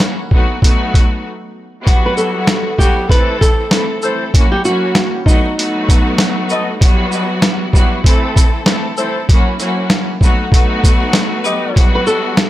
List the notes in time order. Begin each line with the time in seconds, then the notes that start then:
Already playing: F#3 A#3 C#4 E4 F#4
0.00 snare, closed hi-hat
0.31 F#3 A3 B3 D#4 F#4, kick
0.61 F#3 A3 B3 D#4 F#4, kick, closed hi-hat
0.94 kick, closed hi-hat
1.84 F#3 G3 B3 E4 F#4, kick, closed hi-hat
2.06 B4
2.17 A4, shaker
2.47 snare, closed hi-hat
2.78 F#3 G3 B3 E4 F#4 G4, kick, shaker
3.08 E3 A3 C4 E4 A4 B4, kick, closed hi-hat
3.41 A4, kick, closed hi-hat, shaker
3.71 E3 A3 C4 E4 A4, snare, closed hi-hat
4.02 E3 A3 C4 E4 A4 C5, shaker
4.33 F#3 A#3 C#4 E4 F#4, kick, closed hi-hat
4.52 G4
4.64 F#3 A#3 C#4 E4 F#4, shaker
4.95 snare, closed hi-hat
5.26 F#3 A3 B3 D#4 F#4, kick, shaker
5.56 F#3 A3 B3 D#4 F#4, closed hi-hat
5.89 kick, closed hi-hat, shaker
6.18 snare, closed hi-hat
6.49 A4 B4 D#5, shaker
6.79 F#3 G3 B3 E4 F#4, kick, closed hi-hat
7.12 shaker
7.42 snare, closed hi-hat
7.72 F#3 G3 B3 E4 F#4, kick, shaker
8.03 E3 A3 C4 E4 A4, kick, closed hi-hat
8.36 kick, closed hi-hat, shaker
8.66 E3 A3 C4 E4 A4, snare, closed hi-hat
8.97 E3 A3 C4 E4 A4 C5, shaker
9.29 F#3 A#3 C#4 E4 F#4, kick, closed hi-hat
9.59 F#3 A#3 C#4 E4 F#4, closed hi-hat, shaker
9.90 snare, closed hi-hat
10.21 F#3 A3 B3 D#4 F#4, kick, shaker
10.51 F#3 A3 B3 D#4 F#4, kick, closed hi-hat
10.84 kick, closed hi-hat, shaker
11.13 snare, closed hi-hat
11.44 G4 B4 D#5, shaker
11.74 F#3 G3 B3 E4 F#4, kick, closed hi-hat
11.95 B4
12.07 A4, shaker
12.37 snare, closed hi-hat